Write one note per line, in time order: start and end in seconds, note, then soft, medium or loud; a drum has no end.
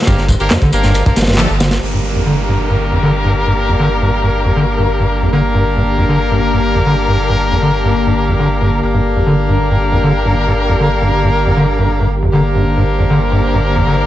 0.00 1.78 D3 medium
0.00 1.78 A#3 medium
0.00 1.78 G4 medium
0.00 1.81 C5 medium
0.00 snare medium
0.00 ride medium
0.07 0.37 G1 loud
0.07 0.16 G2 medium
0.07 0.26 A#3 medium
0.07 0.26 D4 medium
0.07 0.26 G4 medium
0.07 0.26 A#4 medium
0.07 kick loud
0.07 ride medium
0.07 tambourine soft
0.18 snare soft
0.18 tambourine soft
0.28 0.35 G2 medium
0.28 kick medium
0.28 ride medium
0.28 tambourine medium
0.40 0.49 G1 medium
0.40 0.52 A#3 loud
0.40 0.52 D4 loud
0.40 0.52 G4 medium
0.40 0.52 A#4 loud
0.40 ride soft
0.40 tambourine soft
0.51 0.57 F2 medium
0.51 snare loud
0.51 clap loud
0.51 ride medium
0.51 tambourine soft
0.62 0.71 D3 loud
0.62 kick medium
0.62 tambourine soft
0.73 1.03 G1 loud
0.73 1.03 A#3 medium
0.73 1.03 D4 medium
0.73 1.03 G4 medium
0.73 1.03 A#4 medium
0.73 ride medium
0.73 tambourine medium
0.83 0.93 G2 medium
0.83 snare soft
0.83 tambourine soft
0.94 ride medium
0.94 tambourine soft
1.06 1.12 G2 medium
1.06 1.17 A#3 medium
1.06 1.17 D4 medium
1.06 1.17 G4 medium
1.06 1.17 A#4 medium
1.06 kick medium
1.06 tambourine soft
1.16 1.46 G1 medium
1.16 snare medium
1.16 ride medium
1.16 tambourine medium
1.21 snare loud
1.21 ride medium
1.27 1.37 G2 medium
1.27 snare loud
1.27 ride medium
1.27 tambourine soft
1.33 snare loud
1.33 ride medium
1.38 1.48 F3 medium
1.38 1.50 A3 loud
1.38 1.50 D4 loud
1.38 1.50 G4 medium
1.38 1.50 A4 loud
1.38 snare loud
1.38 clap loud
1.38 ride loud
1.38 tambourine soft
1.49 1.79 G1 medium
1.49 tambourine soft
1.60 1.69 D3 loud
1.60 snare loud
1.60 ride medium
1.60 tambourine medium
1.71 snare loud
1.71 ride medium
1.71 tambourine soft
1.82 8.81 G1 medium
1.82 14.06 D3 medium
1.82 5.30 A#3 medium
1.82 14.06 A#3 medium
1.82 5.30 D4 medium
1.82 5.30 G4 medium
1.82 14.06 G4 medium
1.82 5.30 A#4 medium
1.82 5.32 A#4 medium
1.82 downlifter medium
1.93 1.99 G2 medium
2.15 2.21 F2 medium
2.26 2.35 D3 medium
2.48 2.57 G2 medium
2.70 2.76 G2 medium
2.92 2.98 F2 medium
3.03 3.12 D3 loud
3.25 3.34 G2 medium
3.47 3.53 G2 medium
3.69 3.75 F2 medium
3.79 3.89 D3 medium
4.01 4.11 G2 medium
4.23 4.29 G2 medium
4.45 4.51 F2 medium
4.56 4.65 D3 medium
4.78 4.87 G2 medium
5.00 5.06 G2 medium
5.22 5.28 F2 medium
5.32 5.42 D3 medium
5.32 8.80 A#3 medium
5.32 8.80 D4 medium
5.32 8.80 G4 medium
5.32 8.80 A#4 medium
5.32 8.82 A5 medium
5.54 5.64 G2 medium
5.76 5.82 G2 medium
5.98 6.04 F2 medium
6.09 6.18 D3 medium
6.31 6.40 G2 medium
6.53 6.59 G2 medium
6.75 6.81 F2 medium
6.86 6.95 D3 medium
7.08 7.17 G2 medium
7.29 7.36 G2 medium
7.51 7.58 F2 medium
7.62 7.71 D3 loud
7.84 7.93 G2 medium
8.06 8.12 G2 medium
8.28 8.34 F2 medium
8.39 8.48 D3 loud
8.61 8.70 G2 medium
8.83 14.06 G1 medium
8.83 12.16 A#3 medium
8.83 12.16 D4 medium
8.83 12.16 G4 medium
8.83 12.16 A#4 medium
8.83 12.32 A#4 medium
8.94 9.00 G2 medium
9.05 tambourine medium
9.16 9.22 F2 medium
9.27 9.36 D3 loud
9.49 9.58 G2 medium
9.49 tambourine medium
9.71 9.77 G2 medium
9.92 9.99 F2 medium
10.04 10.13 D3 loud
10.25 10.34 G2 medium
10.47 10.53 G2 medium
10.69 10.75 F2 medium
10.80 10.89 D3 loud
10.80 tambourine medium
11.02 11.11 G2 medium
11.24 11.30 G2 medium
11.24 tambourine medium
11.46 11.52 F2 medium
11.57 11.66 D3 loud
11.67 tambourine medium
11.79 11.88 G2 medium
11.90 tambourine soft
12.00 12.07 G2 medium
12.12 tambourine medium
12.23 12.29 F2 medium
12.23 tambourine soft
12.33 12.42 D3 medium
12.33 14.06 A#3 medium
12.33 14.06 D4 medium
12.33 14.06 G4 medium
12.33 14.06 A#4 medium
12.33 14.06 C5 medium
12.33 tambourine soft
12.33 riser medium
12.55 12.64 G2 medium
12.55 tambourine medium
12.77 12.83 G2 medium
12.77 tambourine soft
12.99 13.05 F2 medium
12.99 tambourine medium
13.10 13.19 D3 loud
13.21 tambourine soft
13.32 13.41 G2 medium
13.43 tambourine medium
13.54 13.60 G2 medium
13.65 tambourine soft
13.76 13.82 F2 medium
13.87 13.96 D3 loud
13.87 tambourine medium